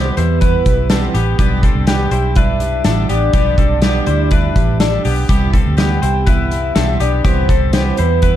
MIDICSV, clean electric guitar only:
0, 0, Header, 1, 2, 480
1, 0, Start_track
1, 0, Key_signature, 0, "major"
1, 0, Tempo, 487805
1, 1368, Time_signature, 4, 2, 24, 8
1, 8229, End_track
2, 0, Start_track
2, 0, Title_t, "Clean electric guitar"
2, 0, Program_c, 0, 27
2, 0, Note_on_c, 0, 59, 61
2, 0, Note_on_c, 0, 67, 84
2, 167, Note_off_c, 0, 67, 0
2, 171, Note_on_c, 0, 72, 82
2, 173, Note_off_c, 0, 59, 0
2, 178, Note_on_c, 0, 64, 63
2, 401, Note_off_c, 0, 64, 0
2, 402, Note_off_c, 0, 72, 0
2, 406, Note_on_c, 0, 71, 74
2, 413, Note_on_c, 0, 64, 59
2, 858, Note_off_c, 0, 71, 0
2, 861, Note_off_c, 0, 64, 0
2, 888, Note_on_c, 0, 69, 73
2, 897, Note_on_c, 0, 60, 60
2, 1121, Note_off_c, 0, 69, 0
2, 1125, Note_on_c, 0, 67, 77
2, 1132, Note_off_c, 0, 60, 0
2, 1135, Note_on_c, 0, 59, 54
2, 1355, Note_off_c, 0, 67, 0
2, 1362, Note_off_c, 0, 59, 0
2, 1366, Note_on_c, 0, 67, 94
2, 1374, Note_on_c, 0, 59, 75
2, 1603, Note_off_c, 0, 67, 0
2, 1607, Note_on_c, 0, 69, 81
2, 1610, Note_off_c, 0, 59, 0
2, 1615, Note_on_c, 0, 60, 62
2, 1842, Note_off_c, 0, 69, 0
2, 1846, Note_on_c, 0, 67, 80
2, 1851, Note_off_c, 0, 60, 0
2, 1854, Note_on_c, 0, 59, 63
2, 2079, Note_off_c, 0, 67, 0
2, 2083, Note_on_c, 0, 72, 78
2, 2088, Note_off_c, 0, 59, 0
2, 2092, Note_on_c, 0, 64, 61
2, 2324, Note_off_c, 0, 72, 0
2, 2328, Note_on_c, 0, 71, 79
2, 2329, Note_off_c, 0, 64, 0
2, 2337, Note_on_c, 0, 62, 58
2, 2778, Note_off_c, 0, 71, 0
2, 2783, Note_off_c, 0, 62, 0
2, 2803, Note_on_c, 0, 69, 77
2, 2813, Note_on_c, 0, 62, 60
2, 3040, Note_off_c, 0, 69, 0
2, 3044, Note_on_c, 0, 67, 74
2, 3049, Note_off_c, 0, 62, 0
2, 3053, Note_on_c, 0, 59, 58
2, 3274, Note_off_c, 0, 67, 0
2, 3281, Note_off_c, 0, 59, 0
2, 3286, Note_on_c, 0, 67, 100
2, 3292, Note_on_c, 0, 59, 74
2, 3521, Note_off_c, 0, 67, 0
2, 3525, Note_on_c, 0, 69, 79
2, 3529, Note_off_c, 0, 59, 0
2, 3532, Note_on_c, 0, 60, 59
2, 3762, Note_off_c, 0, 69, 0
2, 3766, Note_on_c, 0, 67, 79
2, 3768, Note_off_c, 0, 60, 0
2, 3775, Note_on_c, 0, 59, 62
2, 4001, Note_off_c, 0, 67, 0
2, 4005, Note_on_c, 0, 72, 78
2, 4009, Note_off_c, 0, 59, 0
2, 4013, Note_on_c, 0, 64, 59
2, 4240, Note_off_c, 0, 72, 0
2, 4244, Note_on_c, 0, 71, 75
2, 4249, Note_off_c, 0, 64, 0
2, 4252, Note_on_c, 0, 62, 61
2, 4696, Note_off_c, 0, 71, 0
2, 4700, Note_off_c, 0, 62, 0
2, 4728, Note_on_c, 0, 69, 73
2, 4734, Note_on_c, 0, 62, 60
2, 4964, Note_off_c, 0, 69, 0
2, 4968, Note_on_c, 0, 67, 72
2, 4969, Note_off_c, 0, 62, 0
2, 4976, Note_on_c, 0, 59, 55
2, 5194, Note_off_c, 0, 67, 0
2, 5201, Note_off_c, 0, 59, 0
2, 5206, Note_on_c, 0, 67, 94
2, 5213, Note_on_c, 0, 59, 73
2, 5441, Note_off_c, 0, 67, 0
2, 5445, Note_on_c, 0, 69, 77
2, 5449, Note_off_c, 0, 59, 0
2, 5455, Note_on_c, 0, 60, 58
2, 5680, Note_off_c, 0, 69, 0
2, 5684, Note_on_c, 0, 67, 80
2, 5690, Note_off_c, 0, 60, 0
2, 5693, Note_on_c, 0, 59, 62
2, 5921, Note_off_c, 0, 67, 0
2, 5925, Note_on_c, 0, 72, 75
2, 5930, Note_off_c, 0, 59, 0
2, 5934, Note_on_c, 0, 64, 58
2, 6159, Note_off_c, 0, 72, 0
2, 6161, Note_off_c, 0, 64, 0
2, 6163, Note_on_c, 0, 71, 78
2, 6173, Note_on_c, 0, 64, 60
2, 6617, Note_off_c, 0, 71, 0
2, 6622, Note_off_c, 0, 64, 0
2, 6646, Note_on_c, 0, 69, 70
2, 6652, Note_on_c, 0, 60, 60
2, 6887, Note_off_c, 0, 69, 0
2, 6891, Note_off_c, 0, 60, 0
2, 6891, Note_on_c, 0, 67, 75
2, 6900, Note_on_c, 0, 59, 56
2, 7118, Note_off_c, 0, 67, 0
2, 7126, Note_off_c, 0, 59, 0
2, 7130, Note_on_c, 0, 67, 90
2, 7138, Note_on_c, 0, 59, 75
2, 7370, Note_off_c, 0, 67, 0
2, 7374, Note_off_c, 0, 59, 0
2, 7375, Note_on_c, 0, 69, 81
2, 7384, Note_on_c, 0, 60, 60
2, 7610, Note_off_c, 0, 69, 0
2, 7614, Note_on_c, 0, 67, 77
2, 7618, Note_off_c, 0, 60, 0
2, 7623, Note_on_c, 0, 59, 63
2, 7852, Note_off_c, 0, 67, 0
2, 7856, Note_on_c, 0, 72, 77
2, 7858, Note_off_c, 0, 59, 0
2, 7863, Note_on_c, 0, 64, 61
2, 8089, Note_off_c, 0, 72, 0
2, 8090, Note_off_c, 0, 64, 0
2, 8093, Note_on_c, 0, 71, 77
2, 8102, Note_on_c, 0, 64, 59
2, 8229, Note_off_c, 0, 64, 0
2, 8229, Note_off_c, 0, 71, 0
2, 8229, End_track
0, 0, End_of_file